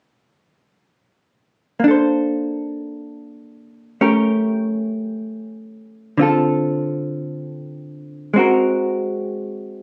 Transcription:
1.80 3.99 A#3 soft
1.84 4.01 D4 soft
1.88 4.02 A4 soft
1.88 4.02 C5 soft
4.01 6.17 A3 soft
4.01 6.17 C#4 soft
4.01 6.17 G4 soft
4.01 6.17 A#4 soft
6.17 8.33 D3 soft
6.17 8.34 C4 soft
6.17 8.35 F4 soft
6.22 8.36 A4 soft
8.34 9.83 G#3 soft
8.34 9.83 C4 soft
8.34 9.83 F#4 soft
8.39 9.83 A#4 soft

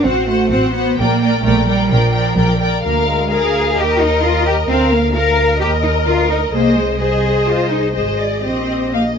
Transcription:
0.04 0.43 A1 medium
0.04 0.28 C4 medium
0.04 0.26 F#4 medium
0.04 0.28 C5 soft
0.04 0.27 F#5 soft
0.28 0.51 A3 medium
0.28 0.50 F#4 soft
0.28 0.51 C5 soft
0.28 0.50 F#5 soft
0.51 0.91 A1 medium
0.51 0.74 C4 medium
0.51 0.74 F#4 soft
0.51 0.75 C5 medium
0.51 0.73 F#5 soft
0.74 0.97 B3 medium
0.74 0.98 F#4 soft
0.74 0.98 C5 soft
0.74 0.97 F#5 medium
0.98 1.37 A#1 medium
0.98 1.45 A#3 medium
0.98 1.20 A#4 medium
0.98 1.21 D5 medium
0.98 1.20 G5 medium
1.21 1.43 A#4 soft
1.21 1.43 D5 soft
1.21 1.43 G5 soft
1.44 1.83 A#1 medium
1.44 1.67 A3 medium
1.44 1.65 A#4 medium
1.44 1.67 D5 medium
1.44 1.66 G5 medium
1.66 1.90 G3 medium
1.66 1.90 A#4 medium
1.66 1.89 D5 soft
1.66 1.89 G5 soft
1.90 2.30 A#1 medium
1.90 2.60 F3 medium
1.90 2.14 A#4 medium
1.90 2.13 D5 medium
1.90 2.12 G5 medium
2.13 2.37 A#4 soft
2.13 2.36 D5 medium
2.13 2.35 G5 soft
2.36 2.76 A#1 medium
2.36 2.59 A#4 medium
2.36 2.60 D5 medium
2.36 2.59 G5 soft
2.60 2.83 A#4 soft
2.60 2.83 D5 medium
2.60 2.83 G5 medium
2.83 3.73 D2 medium
2.83 3.06 A#3 medium
2.83 3.27 A#4 medium
2.83 3.28 A#4 medium
2.83 3.27 F5 medium
3.08 3.30 G#3 medium
3.30 3.77 G#4 medium
3.30 3.74 A#4 medium
3.30 3.76 A#4 medium
3.30 3.76 F5 medium
3.75 4.68 D#2 medium
3.75 4.00 G4 medium
3.75 4.66 A#4 medium
3.75 4.67 A#4 medium
3.75 4.69 D#5 medium
4.01 4.23 D#4 medium
4.23 4.46 F4 medium
4.46 4.54 G4 medium
4.68 5.59 D2 medium
4.68 4.91 C4 medium
4.68 5.14 A#4 medium
4.68 5.13 F5 medium
4.92 5.15 A#3 medium
5.14 5.61 A#4 medium
5.14 5.60 A#4 medium
5.14 5.60 F5 medium
5.60 6.07 D#2 medium
5.60 5.68 G4 medium
5.60 6.52 A#4 medium
5.60 6.52 D#5 medium
5.83 5.91 D#4 medium
6.07 6.54 D2 medium
6.07 6.30 F4 medium
6.31 6.39 D#4 medium
6.53 7.92 C2 medium
6.53 6.77 A#3 medium
6.53 6.99 G#4 medium
6.53 7.00 C5 medium
6.53 6.99 D#5 medium
6.77 7.01 G#3 medium
7.00 7.93 G#4 medium
7.00 7.47 G#4 medium
7.00 7.93 C5 medium
7.00 7.93 D#5 medium
7.47 7.71 F4 medium
7.71 7.95 D#4 medium
7.94 8.43 G#1 soft
7.94 8.43 G#3 medium
7.94 8.42 G#4 soft
7.94 8.18 C5 soft
7.94 8.42 D#5 soft
8.19 8.44 D5 soft
8.43 9.18 A#1 soft
8.43 8.92 C4 medium
8.43 8.91 G4 soft
8.43 8.90 D#5 soft
8.43 8.93 D#5 soft
8.91 9.18 A#3 medium
8.91 9.01 G4 soft
8.91 9.18 D#5 soft
8.91 9.01 F5 medium

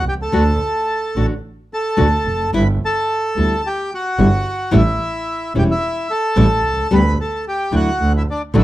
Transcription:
0.06 0.33 C2 soft
0.06 0.14 G4 medium
0.06 0.14 G5 medium
0.22 1.26 A4 medium
0.22 1.26 A5 medium
0.32 0.56 D2 loud
0.32 0.42 D3 medium
0.32 0.42 A3 medium
0.32 0.42 D4 medium
0.32 0.42 F#4 medium
1.16 1.39 A1 medium
1.16 1.33 D3 soft
1.16 1.33 A3 soft
1.16 1.33 D4 medium
1.16 1.33 F#4 medium
1.74 2.51 A4 medium
1.74 2.51 A5 loud
1.97 2.21 D2 medium
1.97 2.06 D3 medium
1.97 2.06 A3 medium
1.97 2.07 D4 medium
1.97 2.07 F#4 medium
2.26 2.53 F1 medium
2.53 2.76 G1 medium
2.53 2.62 G3 medium
2.53 2.62 B3 medium
2.53 2.63 E4 medium
2.53 2.67 B4 medium
2.53 2.68 B5 medium
2.85 3.61 A4 medium
2.85 3.68 A5 medium
3.36 3.59 D2 medium
3.36 3.53 G3 soft
3.36 3.53 B3 soft
3.36 3.54 E4 medium
3.67 3.91 G4 medium
3.67 3.93 G5 medium
3.94 4.71 F#4 medium
3.94 4.77 F#5 medium
4.18 4.41 G1 medium
4.18 4.27 G3 medium
4.18 4.27 B3 medium
4.18 4.28 E4 medium
4.71 4.96 A1 loud
4.71 4.81 E3 medium
4.71 4.81 G3 medium
4.71 4.81 C#4 medium
4.71 4.81 E4 medium
4.77 5.53 E4 medium
4.77 5.53 E5 medium
5.55 5.78 E1 medium
5.55 5.72 E3 medium
5.55 5.72 G3 medium
5.55 5.72 C#4 medium
5.55 5.72 E4 medium
5.55 5.63 G4 medium
5.55 5.64 G5 medium
5.71 6.08 E4 medium
5.71 6.12 E5 medium
6.11 6.88 A4 medium
6.11 6.95 A5 loud
6.36 6.59 A1 loud
6.36 6.45 E3 medium
6.36 6.45 G3 loud
6.36 6.45 C#4 medium
6.36 6.46 E4 loud
6.63 6.89 C2 medium
6.90 7.13 D2 loud
6.90 7.00 D3 medium
6.90 7.00 G3 medium
6.90 7.00 B3 loud
6.90 7.00 G4 medium
6.90 7.18 B4 medium
6.95 7.18 B5 loud
7.21 7.45 A4 medium
7.21 7.45 A5 medium
7.48 7.72 G4 medium
7.48 7.75 G5 medium
7.72 7.95 D2 medium
7.72 7.89 D3 medium
7.72 7.89 F#3 medium
7.72 7.89 A3 soft
7.72 7.89 D4 medium
7.72 7.89 E4 medium
7.72 8.12 F#4 medium
7.76 8.13 F#5 loud
8.00 8.23 D2 medium
8.17 8.22 E4 medium
8.17 8.23 E5 medium
8.30 8.42 D4 medium
8.30 8.42 D5 medium
8.54 8.64 A1 loud
8.54 8.63 D3 medium
8.54 8.64 F#3 medium
8.54 8.64 A3 medium
8.54 8.64 D4 medium
8.54 8.64 E4 medium
8.58 8.64 E5 medium

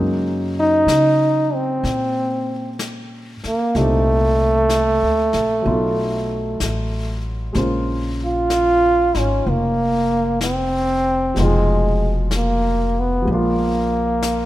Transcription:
0.00 0.84 F#2 medium
0.00 3.74 C#3 soft
0.00 3.72 F#3 soft
0.00 3.73 G#3 soft
0.00 3.74 A#3 soft
0.00 3.75 D#4 soft
0.00 0.12 G#4 soft
0.59 1.56 D#4 medium
0.86 1.79 C#3 medium
0.86 brush sweep soft
0.86 snare soft
0.86 hi-hat pedal soft
1.54 2.80 C4 medium
1.84 3.39 A#2 medium
1.84 brush sweep soft
1.84 snare soft
2.79 brush sweep soft
2.79 snare soft
2.79 hi-hat pedal soft
3.44 3.78 A#3 medium
3.44 muted upright bass stroke soft
3.44 snare soft
3.75 4.98 C2 medium
3.75 5.65 A#2 soft
3.75 5.65 G3 soft
3.75 7.25 A3 medium
3.75 5.65 C4 soft
3.75 5.65 D4 soft
3.75 5.65 D#4 soft
3.75 brush sweep soft
3.75 snare soft
4.69 brush sweep soft
4.69 snare soft
4.69 hi-hat pedal soft
5.03 5.31 D2 soft
5.33 5.63 A#1 medium
5.33 snare soft
5.62 6.56 B1 medium
5.62 7.54 F#3 soft
5.62 7.54 A3 soft
5.62 7.55 B3 soft
5.62 brush sweep soft
5.66 7.56 D#4 soft
5.66 7.56 F4 soft
6.60 7.51 A1 medium
6.60 brush sweep soft
6.60 snare soft
6.60 hi-hat pedal soft
7.53 9.11 A#1 medium
7.53 11.34 G#3 soft
7.53 11.36 A#3 soft
7.53 11.36 C5 soft
7.53 brush sweep soft
7.53 snare soft
7.57 11.37 C#3 soft
7.57 9.14 F4 medium
8.25 9.20 F4 medium
8.50 brush sweep soft
8.50 snare soft
8.50 hi-hat pedal soft
9.14 9.43 G#1 medium
9.14 9.51 C#4 medium
9.14 11.36 D#4 soft
9.14 11.37 F4 soft
9.14 snare soft
9.46 11.33 F1 medium
9.46 10.42 A#3 medium
9.46 brush sweep soft
10.41 11.43 C4 medium
10.41 brush sweep soft
10.41 snare soft
10.41 hi-hat pedal soft
11.34 13.24 F1 medium
11.34 13.28 B2 soft
11.34 13.20 F3 soft
11.34 13.23 G#3 soft
11.34 brush sweep soft
11.34 snare soft
11.38 12.17 G#3 medium
11.38 13.28 D#4 soft
11.38 13.29 F4 medium
12.31 brush sweep soft
12.31 snare soft
12.31 hi-hat pedal soft
12.36 13.01 A#3 medium
13.00 13.29 B3 medium
13.22 14.46 F3 soft
13.22 14.46 G#3 soft
13.27 14.46 A#1 medium
13.27 14.46 A#2 soft
13.27 brush sweep soft
13.31 14.46 A#3 medium
13.31 14.46 D4 soft
13.31 14.46 F4 soft
14.22 brush sweep soft
14.22 snare soft
14.22 hi-hat pedal soft

